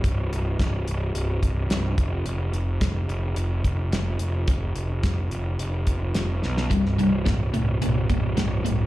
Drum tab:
HH |x-x-x-x-x-x-x-x-|x-x-x-x-x-x-x-x-|x-x-x-x-x-x-x---|x-x-x-x-x-x-x-x-|
SD |----o-------o---|----o-------o---|----o-------o-oo|-o--o-------o---|
BD |o---o-----o---o-|----o-----o-----|o---o-----o-----|o---o-----o-----|